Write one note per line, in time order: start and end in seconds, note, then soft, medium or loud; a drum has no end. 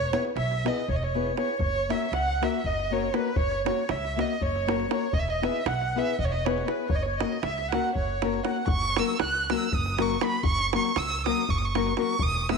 0.00 0.14 E1 medium
0.00 0.12 C#5 medium
0.00 0.12 C#5 loud
0.12 0.29 B3 medium
0.12 0.29 E4 medium
0.12 0.30 G#4 medium
0.12 0.30 B4 medium
0.12 0.23 C#5 medium
0.12 davul high medium
0.25 davul high soft
0.36 0.67 B1 loud
0.36 0.64 E5 medium
0.36 0.69 E5 loud
0.36 davul high medium
0.51 davul high soft
0.65 0.81 B3 medium
0.65 0.82 E4 medium
0.65 0.82 G#4 medium
0.65 0.83 B4 medium
0.65 0.89 D#5 medium
0.65 davul high medium
0.78 davul high soft
0.88 1.31 E1 medium
0.88 0.95 C#5 medium
0.88 0.97 C#5 medium
0.88 davul low medium
0.95 1.03 D#5 medium
0.95 1.05 D#5 medium
1.03 1.37 C#5 medium
1.03 1.36 C#5 medium
1.03 davul high soft
1.14 1.31 B3 medium
1.14 1.31 E4 medium
1.14 1.31 G#4 medium
1.14 1.32 B4 medium
1.27 davul high soft
1.36 1.53 B3 medium
1.36 1.53 E4 soft
1.36 1.53 G#4 medium
1.36 1.54 B4 medium
1.36 1.58 C#5 medium
1.36 davul high medium
1.49 davul high soft
1.59 1.91 F#1 medium
1.59 1.87 C#5 medium
1.59 1.92 C#5 loud
1.59 davul low medium
1.76 davul high soft
1.89 2.06 A#3 medium
1.89 2.06 C#4 medium
1.89 2.06 F#4 medium
1.89 2.06 A#4 medium
1.89 2.13 E5 medium
1.89 2.14 E5 medium
1.89 davul high medium
2.12 2.44 C#2 medium
2.12 2.45 F#5 loud
2.12 2.43 F#5 medium
2.12 davul high medium
2.28 davul high soft
2.41 2.58 A#3 medium
2.41 2.58 C#4 medium
2.41 2.59 F#4 medium
2.41 2.59 A#4 medium
2.41 2.66 E5 medium
2.41 2.67 E5 medium
2.41 davul high medium
2.64 3.07 F#1 medium
2.64 2.94 D#5 medium
2.64 2.92 D#5 medium
2.64 davul low medium
2.79 davul high soft
2.91 3.07 A#3 medium
2.91 3.08 C#4 medium
2.91 3.08 F#4 medium
2.91 3.08 A#4 medium
2.91 3.14 C#5 medium
2.91 3.16 C#5 medium
3.03 davul high soft
3.13 3.29 A#3 medium
3.13 3.30 C#4 soft
3.13 3.30 F#4 medium
3.13 3.30 A#4 medium
3.13 3.36 B4 medium
3.13 3.38 B4 medium
3.13 davul high medium
3.36 3.68 F#1 medium
3.36 3.66 C#5 loud
3.36 3.65 C#5 medium
3.36 davul low loud
3.52 davul high soft
3.65 3.82 A#3 medium
3.65 3.82 C#4 medium
3.65 3.82 F#4 medium
3.65 3.83 A#4 medium
3.65 3.92 C#5 medium
3.65 3.88 C#5 medium
3.65 davul high medium
3.78 davul high soft
3.89 4.21 C#2 medium
3.89 4.19 E5 medium
3.89 4.22 E5 medium
3.89 davul high medium
4.05 davul high soft
4.16 4.34 A#3 medium
4.16 4.35 C#4 medium
4.16 4.35 F#4 medium
4.16 4.35 A#4 medium
4.16 4.42 D#5 medium
4.16 davul high medium
4.21 4.44 D#5 medium
4.41 4.84 F#1 medium
4.41 4.90 C#5 medium
4.41 davul low medium
4.56 davul high soft
4.67 4.84 A#3 medium
4.67 4.84 C#4 medium
4.67 4.84 F#4 medium
4.67 4.85 A#4 medium
4.67 davul high medium
4.80 davul high soft
4.88 5.05 A#3 medium
4.88 5.06 C#4 medium
4.88 5.06 F#4 medium
4.88 5.06 A#4 medium
4.88 5.15 C#5 medium
4.88 5.12 C#5 medium
4.88 davul high medium
5.13 5.45 E1 medium
5.13 5.21 D#5 loud
5.13 5.21 D#5 medium
5.13 davul low loud
5.19 5.31 E5 loud
5.19 5.28 E5 medium
5.28 5.44 D#5 medium
5.28 5.45 D#5 medium
5.28 davul high soft
5.42 5.59 B3 medium
5.42 5.59 E4 medium
5.42 5.59 G#4 medium
5.42 5.60 B4 medium
5.42 5.69 E5 medium
5.42 5.67 E5 medium
5.42 davul high medium
5.56 davul high soft
5.66 5.98 B1 medium
5.66 5.96 F#5 medium
5.66 6.00 F#5 loud
5.66 davul high medium
5.82 davul high soft
5.96 6.12 B3 medium
5.96 6.13 E4 medium
5.96 6.13 G#4 medium
5.96 6.13 B4 medium
5.96 6.19 E5 medium
5.96 6.19 E5 loud
6.19 6.61 E1 medium
6.19 6.26 D#5 medium
6.19 davul low medium
6.24 6.33 C#5 medium
6.24 6.32 C#5 medium
6.32 6.47 D#5 medium
6.32 6.46 D#5 medium
6.32 davul high soft
6.45 6.61 B3 medium
6.45 6.62 E4 medium
6.45 6.62 G#4 medium
6.45 6.62 B4 medium
6.45 6.68 C#5 medium
6.45 davul high medium
6.58 davul high soft
6.66 6.83 B3 medium
6.66 6.84 E4 medium
6.66 6.84 G#4 soft
6.66 6.89 B4 medium
6.66 6.84 B4 medium
6.66 6.90 B4 medium
6.66 davul high medium
6.89 7.22 F#1 medium
6.89 6.96 C#5 loud
6.89 6.97 C#5 medium
6.89 davul low loud
6.95 7.04 D#5 loud
6.95 7.05 D#5 medium
7.03 7.18 C#5 medium
7.03 davul high soft
7.07 7.21 C#5 medium
7.18 7.37 A#3 medium
7.18 7.37 C#4 medium
7.18 7.37 F#4 medium
7.18 7.43 D#5 medium
7.18 7.42 D#5 medium
7.18 davul high medium
7.22 7.38 A#4 medium
7.32 davul high soft
7.42 7.75 C#2 medium
7.42 7.70 E5 loud
7.42 7.74 E5 medium
7.42 davul high medium
7.58 davul high soft
7.71 7.89 A#3 medium
7.71 7.90 C#4 medium
7.71 7.90 F#4 medium
7.71 7.90 A#4 medium
7.71 7.93 F#5 medium
7.71 davul high medium
7.76 7.96 F#5 medium
7.84 davul high soft
7.95 8.39 F#1 medium
7.95 8.45 C#5 medium
7.95 8.42 C#5 medium
7.95 davul low medium
8.22 8.38 A#3 medium
8.22 8.39 C#4 medium
8.22 8.39 F#4 medium
8.22 8.39 A#4 medium
8.22 davul high medium
8.34 davul high soft
8.44 8.60 A#3 medium
8.44 8.61 C#4 medium
8.44 8.61 F#4 medium
8.44 8.61 A#4 medium
8.44 8.66 F#5 medium
8.44 davul high medium
8.48 8.68 F#5 medium
8.56 davul high soft
8.67 8.98 F#1 medium
8.67 9.00 C#6 loud
8.67 davul low loud
8.82 davul high soft
8.96 9.14 F#3 medium
8.96 9.14 A#3 medium
8.96 9.14 C#4 medium
8.96 9.14 F#4 medium
8.96 9.14 A#4 medium
8.96 9.21 E6 loud
8.96 davul high medium
9.08 davul high soft
9.20 9.51 C#2 medium
9.20 9.48 F#6 loud
9.20 davul high medium
9.34 davul high soft
9.50 9.66 F#3 medium
9.50 9.67 A#3 medium
9.50 9.67 C#4 medium
9.50 9.67 F#4 medium
9.50 9.67 A#4 medium
9.50 9.77 E6 loud
9.50 davul high medium
9.72 10.15 F#1 loud
9.72 10.03 D#6 loud
9.72 davul low medium
9.86 davul high soft
9.98 10.14 F#3 medium
9.98 10.15 A#3 medium
9.98 10.15 C#4 medium
9.98 10.15 F#4 medium
9.98 10.15 A#4 medium
9.98 10.25 C#6 medium
9.98 davul high medium
10.10 davul high soft
10.20 10.37 F#3 medium
10.20 10.37 A#3 medium
10.20 10.37 C#4 medium
10.20 10.38 F#4 medium
10.20 10.38 A#4 medium
10.20 10.44 B5 loud
10.20 davul high medium
10.43 10.75 F#1 medium
10.43 10.72 C#6 loud
10.43 davul low loud
10.58 davul high soft
10.73 10.90 F#3 medium
10.73 10.90 A#3 medium
10.73 10.90 C#4 medium
10.73 10.91 F#4 medium
10.73 10.91 A#4 medium
10.73 10.99 C#6 medium
10.73 davul high medium
10.85 davul high soft
10.96 11.28 C#2 medium
10.96 11.26 E6 loud
10.96 davul high medium
11.11 davul high soft
11.26 11.43 F#3 medium
11.26 11.43 A#3 medium
11.26 11.43 C#4 medium
11.26 11.43 F#4 medium
11.26 11.43 A#4 medium
11.26 11.51 D#6 loud
11.26 davul high medium
11.49 11.92 F#1 medium
11.49 11.59 C#6 loud
11.49 davul low medium
11.58 11.66 D#6 medium
11.62 11.98 C#6 medium
11.62 davul high soft
11.75 11.91 F#3 medium
11.75 11.92 A#3 medium
11.75 11.92 C#4 medium
11.75 11.92 F#4 medium
11.75 11.93 A#4 medium
11.75 davul high medium
11.87 davul high soft
11.97 12.14 F#3 medium
11.97 12.14 A#3 medium
11.97 12.14 C#4 medium
11.97 12.14 F#4 medium
11.97 12.14 A#4 medium
11.97 12.24 C#6 loud
11.97 davul high medium
12.19 12.53 E1 medium
12.19 12.51 D#6 loud
12.19 davul low loud
12.34 davul high soft
12.49 12.58 G#3 medium
12.49 12.58 B3 medium
12.49 12.58 E4 medium
12.49 12.58 G#4 medium
12.49 12.58 B4 medium
12.49 12.58 E6 loud
12.49 davul high medium